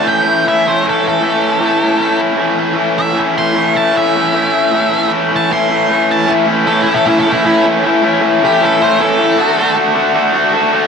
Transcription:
X:1
M:4/4
L:1/8
Q:1/4=154
K:A
V:1 name="Lead electric guitar"
=g2 e =c A A3- | A3 z4 e | z =c'2 a e4- | e2 z a =c'3 a |
z2 (3A E A (3E A E E z | z3 =G A =c A2- | A2 z6 |]
V:2 name="Overdriven electric guitar"
[A,,E,A,CE] [A,CE] [E,A,CE] [A,CE] [A,,E,A,CE] [A,CE] [E,A,CE]2 | [A,,E,A,CE] [A,CE] [E,A,CE] [A,CE] [A,,E,A,CE] [A,CE] [E,A,CE]2 | [A,,E,A,CE] [A,CE] [E,A,CE] [A,CE] [A,,E,A,CE] [A,CE] [E,A,CE]2 | [A,,E,A,CE] [A,CE] [E,A,CE] [A,CE] [A,,E,A,CE] [A,CE] [E,A,CE]2 |
[A,,E,A,CE] [A,,E,A,CE] [A,,E,A,CE] [A,,E,A,CE] [A,,E,A,CE] [A,,E,A,CE] [A,,E,A,CE] [A,,E,A,CE] | [A,,E,A,CE] [A,,E,A,CE] [A,,E,A,CE] [A,,E,A,CE] [A,,E,A,CE] [A,,E,A,CE] [A,,E,A,CE] [A,,E,A,CE] | [D,A,DF] [D,A,DF] [D,A,DF] [D,A,DF] [D,A,DF] [D,A,DF] [D,A,DF] [D,A,DF] |]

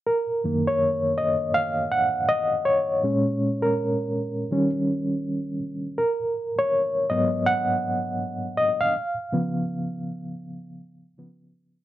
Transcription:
X:1
M:4/4
L:1/16
Q:"Swing 16ths" 1/4=81
K:F#
V:1 name="Reed electric piano"
A3 c3 d2 e2 f2 d2 c2- | c3 A6 z6 z | A3 c3 d2 f4 z2 d e- | e12 z4 |]
V:2 name="Reed electric piano" clef=bass
z2 [F,,D,A,]12- [F,,D,A,]2 | [A,,G,C]8 [D,=G,C]6 z2 | z6 [G,,F,B,]2 z8 | z2 [C,E,B,]2 z8 [C,E,B,]2 z2 |]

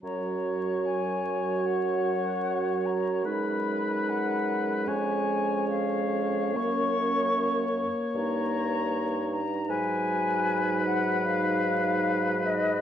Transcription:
X:1
M:4/4
L:1/8
Q:1/4=75
K:F#
V:1 name="Flute"
a2 g2 f3 a | b2 f2 g2 e2 | c'3 z a3 a | g3 f e3 d |]
V:2 name="Oboe"
c8 | B4 c4- | c6- c z | B8 |]
V:3 name="Clarinet"
F8 | D4 C4- | C3 z D4- | D8 |]
V:4 name="French horn" clef=bass
F,8 | G,8 | A,6- A, z | F,8 |]
V:5 name="Bassoon" clef=bass
F,,8- | F,,4 E,,4 | F,,3 z =G,,4 | G,,8 |]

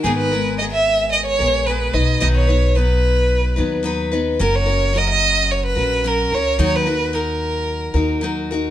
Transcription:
X:1
M:4/4
L:1/16
Q:1/4=110
K:G#m
V:1 name="Violin"
G B3 d e3 d c3 B2 d2 | d c3 B8 z4 | A c3 d d3 c B3 A2 c2 | c B3 A8 z4 |]
V:2 name="Steel-string acoustic guitar"
[G,,D,G,B,GA]2 [G,B,GA]2 [G,B,GA]6 [G,B,GA]2 [G,B,GA]2 [F,B,DB]2 | [B,,D,F,B,DB]2 [F,B,DB]2 [F,B,DB]6 [F,B,DB]2 [F,B,DB]2 [F,B,DB]2 | [F,CFA]2 [CFA]2 [F,CFA]6 [CFA]2 [F,CFA]2 [CFA]2 | [D,F,DFA]2 [DFA]2 [F,DFA]6 [DFA]2 [F,DFA]2 [DFA]2 |]
V:3 name="Upright bass" clef=bass
G,,,8- G,,,2 A,,,4 B,,,2 | B,,,8- B,,,2 D,,6 | F,,,8- F,,,2 A,,,4 C,,2 | D,,8- D,,2 D,,6 |]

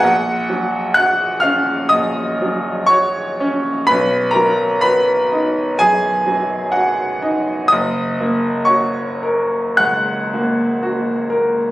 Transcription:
X:1
M:4/4
L:1/8
Q:1/4=62
K:F#
V:1 name="Upright piano"
[Ff]2 [ff'] [ee'] [dd']2 [cc']2 | [Bb] [Aa] [Bb]2 [Gg]2 [Ff] z | [dd']2 [cc']2 [ff']4 |]
V:2 name="Upright piano"
A,,, F, F C A,,, F, F C | B,,, F, F D F,, F,2 D | F,,, A, F A C,, A, F A |]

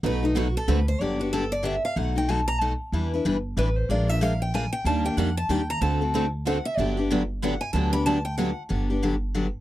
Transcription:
X:1
M:3/4
L:1/16
Q:"Swing" 1/4=187
K:Bphr
V:1 name="Steel-string acoustic guitar"
B2 ^D2 F2 A2 B2 c2 | [K:G] d2 F2 A2 d2 e2 =f2 | f2 g2 a2 _b2 a2 z2 | z8 B2 c2 |
d2 e2 =f2 g2 _a2 g2 | a2 g2 f2 a2 g2 _b2 | a6 z2 f2 e2 | d2 z6 f2 _a2 |
a2 b2 a2 g2 f3 z | z12 |]
V:2 name="Steel-string acoustic guitar"
[B,,F,A,^DF]2 [A,DF]2 [B,,F,A,DF]2 z2 [=D,A,CFA]2 z2 | [K:G] [D,F,B,DG]2 [B,DG]2 [D,F,B,DG]2 z2 [D,F,B,DG]2 z2 | [B,,F,A,^DF]2 [A,DF]2 [B,,F,A,DF]2 z2 [B,,F,A,DF]2 z2 | [E,G,DEB]2 [DEB]2 [E,G,DEB]2 z2 [E,G,DEB]2 z2 |
[=F,_A,D=F_B]2 [DFB]2 [F,A,DFB]2 z2 [F,A,DFB]2 z2 | [_E,G,_B,DG]2 [B,DG]2 [E,G,B,DG]2 z2 [E,G,B,DG]2 z2 | [D,A,CFA]2 [CFA]2 [D,A,CFA]2 z2 [D,A,CFA]2 z2 | [D,F,B,DG]2 [B,DG]2 [D,F,B,DG]2 z2 [D,F,B,DG]2 z2 |
[D,F,B,DG]2 [B,DG]2 [D,F,B,DG]2 z2 [D,F,B,DG]2 z2 | [D,F,B,DG]2 [B,DG]2 [D,F,B,DG]2 z2 [D,F,B,DG]2 z2 |]
V:3 name="Steel-string acoustic guitar"
[B,,F,A,^DFB]2 z2 [B,,F,A,DFB]2 z2 [=D,A,CFA]2 z2 | [K:G] z12 | z12 | z12 |
z12 | [_E,G,_B,DG]2 z2 [E,G,B,DG]2 z2 [E,G,B,DG]2 z2 | [D,A,CFA]2 z2 [D,A,CFA]2 z2 [D,A,CFA]2 z2 | [D,F,B,DG]2 z2 [D,F,B,DG]2 z2 [D,F,B,DG]2 z2 |
[D,F,B,DG]2 z2 [D,F,B,DG]2 z2 [D,F,B,DG]2 z2 | z12 |]
V:4 name="Upright bass" clef=bass
B,,,8 D,,4 | [K:G] G,,,12 | B,,,12 | E,,4 G,,,4 A,,,4 |
_B,,,12 | _E,,4 =F,,4 E,,4 | D,,12 | G,,,12 |
D,,12 | G,,,12 |]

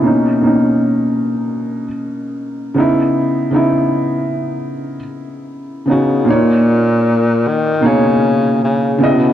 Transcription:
X:1
M:4/4
L:1/8
Q:"Swing 16ths" 1/4=77
K:B
V:1 name="Felt piano"
[B,,A,CD] [B,,A,CD]4 z2 [C,B,DE]- | [C,B,DE] [C,B,DE]4 z2 [C,B,DF] | [A,,A,Dc]4 [B,,A,Dc]3 [C,B,Ed] |]
V:2 name="Tenor saxophone" clef=bass
z8 | z6 z C, | A,,3 D, C,2 C, B,, |]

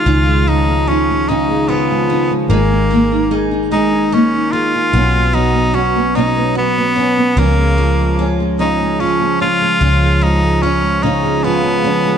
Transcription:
X:1
M:6/8
L:1/16
Q:3/8=49
K:C#mix
V:1 name="Tenor saxophone"
E2 D2 C2 D2 B,4 | A,4 z2 D2 C2 E2- | E2 D2 C2 D2 B,4 | A,4 z2 D2 C2 E2- |
E2 D2 C2 D2 B,4 |]
V:2 name="Steel-string acoustic guitar"
[D,E]2 G,2 E2 C2 E2 C2 | [D,D]2 D,2 D2 A,2 D2 A,2 | B,2 B,2 F2 C2 F2 C2 | [E,E]2 G,2 E2 C2 E2 C2 |
[E,E]2 G,2 E2 C2 E2 C2 |]
V:3 name="Nylon-string guitar" clef=bass
[C,D] G, E, G, D G, [C,D] G, E, G, D G, | [G,G] D A, D G D [G,G] D A, D G D | [B,,C] B, F, B, C B, [B,,C] B, F, B, C B, | [C,C] G, E, G, C G, [C,C] G, E, G, C G, |
[C,C] G, E, G, C G, [C,C] G, E, G, C G, |]
V:4 name="Fingered electric bass" clef=bass
C,,12 | G,,,12 | B,,,12 | C,,12 |
C,,12 |]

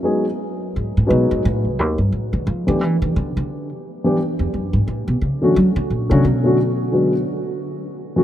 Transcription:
X:1
M:4/4
L:1/8
Q:"Swing" 1/4=175
K:Bdor
V:1 name="Grand piano"
[F,G,B,^DG] z4 z [F,G,B,DB]2 | z6 z [E,A,B,D=G] | z6 z [E,=G,B,D=G] | z6 z [D,F,A,CF] |
z3 [D,F,A,CF] z [D,F,A,CF] z2 | [D,F,G,B,F] z6 [E,F,A,CF] |]
V:2 name="Upright bass" clef=bass
z4 G,, A,, B,, G,, | A,, =C,, _E,, =G,, A,, D, =F, _E, | E, ^D, =D, D,2 z3 | z E,, F,, G,, A,, B,, C, E, |
F, D, ^A,, C, B,,4- | B,,2 z6 |]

